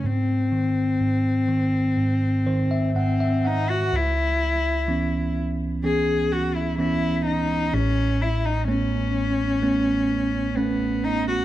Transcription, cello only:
X:1
M:4/4
L:1/16
Q:1/4=63
K:C#m
V:1 name="Cello"
^B,12 B,2 D F | E6 z2 G2 F E E2 D2 | C2 E D C8 B,2 D F |]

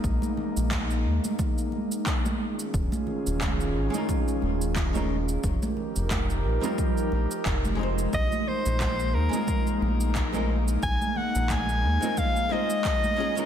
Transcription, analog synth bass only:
X:1
M:4/4
L:1/16
Q:"Swing 16ths" 1/4=89
K:Bbm
V:1 name="Analog synth bass" clef=bass
B,,, z2 B,,,3 E,, z8 z | E,,, z2 E,,,3 A,,, z3 E,,,6 | F,,, z2 F,,,3 B,,, z3 B,,, z F,,,4 | B,,, z2 B,,,3 E,, z3 B,,,6 |
B,,, z2 B,,,3 E,, z8 z |]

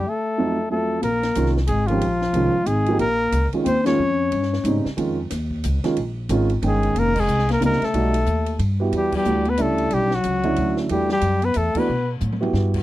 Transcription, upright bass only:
X:1
M:3/4
L:1/8
Q:"Swing" 1/4=182
K:Flyd
V:1 name="Upright bass" clef=bass
z6 | [K:Bbdor] B,,,2 C,,2 A,,,2 | B,,,2 C,, z A,,,2 | B,,,2 D,, z E,,2 |
F,,2 G,,2 A,, z | F,,2 E,,2 D,, z | B,,,2 A,,,2 G,,,2 | F,,,2 C,,2 D,, z |
=B,,,2 ^D,,2 G,,2 | [K:Edor] E,,2 D,,2 C,,2 | B,,,2 C,,2 D,,2 | E,,2 F,,2 E,, z |
B,,2 A,,2 G,,2 |]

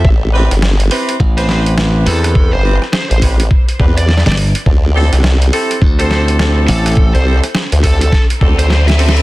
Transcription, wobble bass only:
X:1
M:4/4
L:1/16
Q:"Swing 16ths" 1/4=104
K:Am
V:1 name="Wobble bass" clef=bass
A,,,3 G,,,3 z8 z2 | z G,,,2 z2 A,,,3 z2 E,,3 z3 | D,,3 C,,3 z8 z2 | z C,,2 z2 D,,3 z2 D,,6 |]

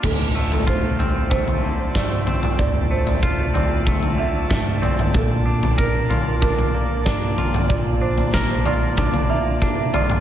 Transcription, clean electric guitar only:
X:1
M:4/4
L:1/8
Q:1/4=94
K:Dm
V:1 name="Clean electric guitar"
D,, A, F C A, D, A, C | D,, A, F C A, D, A, C | B,, D B F D B, D F | B,, D B F D B, D F |]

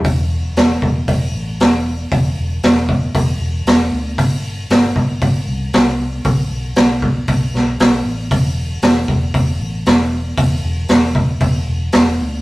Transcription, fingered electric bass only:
X:1
M:4/4
L:1/8
Q:1/4=116
K:G
V:1 name="Fingered electric bass" clef=bass
E,,,2 E,,, E,,, E,,, A,,, E,,,2 | E,,, E,,, E,,,2 E,,, E,,, E,,, D,, | G,,,2 G,,, G,,, G,,, C,, C,,2 | B,,, B,,, B,,,2 B,,, B,,, B,,, A,,, |
E,,,2 E,,, E,,, E,,, A,,, E,,,2 | E,,, E,,, E,,,2 E,,, E,,, E,,, D,, |]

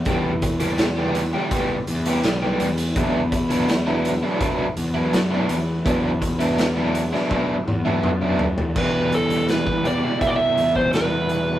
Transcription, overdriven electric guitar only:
X:1
M:4/4
L:1/16
Q:1/4=83
K:Em
V:1 name="Overdriven electric guitar"
[E,G,B,G] z2 [E,G,B,G] z [E,G,B,G] z [E,G,B,G] [E,G,B,G] z2 [E,G,B,G] z [E,G,B,G] z2 | [F,B,DE] z2 [F,B,DE] z [F,B,DE] z [F,B,DE] [F,B,DE] z2 [F,B,DE] z [F,B,DE] z2 | [F,B,DE] z2 [F,B,DE] z [F,B,DE] z [F,B,DE] [F,B,DE] z2 [F,B,DE] z [F,B,DE] z2 | [E,,B,,E,G,EG]6 [E,,B,,E,G,EG]8- [E,,B,,E,G,EG]2 |]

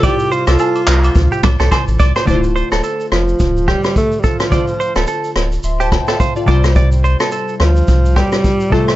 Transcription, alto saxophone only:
X:1
M:4/4
L:1/16
Q:"Swing 16ths" 1/4=107
K:Dm
V:1 name="Alto saxophone" clef=bass
G2 F8 z6 | z6 F,4 G,2 A,3/2 G,/2 F,2- | F,4 z12 | z6 F,4 G,4 A,2 |]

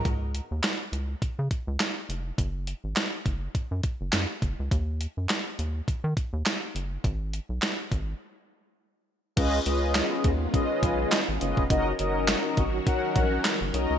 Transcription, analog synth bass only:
X:1
M:4/4
L:1/16
Q:"Swing 16ths" 1/4=103
K:C#mix
V:1 name="Analog synth bass" clef=bass
C,,3 D,, z2 C,,2 C, C, z C,, z2 E,,,2 | F,,,3 G,,, z2 F,,,2 F,, F,, z F,,, F,, z F,,, C,, | D,,3 F,, z2 D,,2 D, D, z D,, z2 F,,,2 | G,,,3 B,,, z2 G,,,2 z8 |
C,,2 C,,3 z D,,2 z2 B,,,2 z G,,, F,,, E,,, | F,,,2 F,,,3 z G,,,2 z2 A,,,2 z F,,, B,,, C,, |]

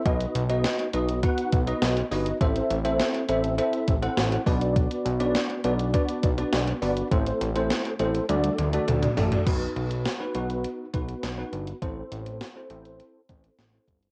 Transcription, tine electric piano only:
X:1
M:4/4
L:1/16
Q:1/4=102
K:Bphr
V:1 name="Tine electric piano"
[B,^DFB^d]3 [B,DFBd]3 [B,DFBd]2 [B,DFBf]3 [B,DFBd]3 [B,DFBd]2 | [CEAce]3 [CEAce]3 [CEAce]2 [CEAce]3 [CEAcf]3 [B,DFBd]2- | [B,DFBd]2 z [B,DFBd]3 [B,DFBd]2 [B,DFBd]3 [B,DFBd]3 [B,DFBd]2 | [A,CEAc]3 [A,CEAc]3 [A,CEAc]2 [A,DFAd]3 [A,DFAd]3 [A,DFAd]2 |
[B,^DFB]4 z [B,DFB] [B,DFB]3 z [B,DFB]3 [B,DFB]3 | [CEAc]4 z [CEAc] [CEAc]3 z [CEAc]3 [CEAc]3 |]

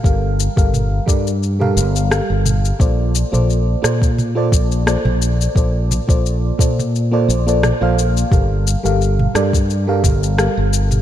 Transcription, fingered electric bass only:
X:1
M:4/4
L:1/16
Q:"Swing 16ths" 1/4=87
K:Gm
V:1 name="Fingered electric bass" clef=bass
G,,,2 z G,,,2 z G,,4 G,,,2 z G,,,2 z | B,,,2 z B,,,2 z B,,4 B,,,2 z B,,,2 z | B,,,2 z B,,,2 z B,,4 B,,,2 z B,,,2 z | G,,,2 z G,,,2 z G,,4 G,,,2 z G,,,2 z |]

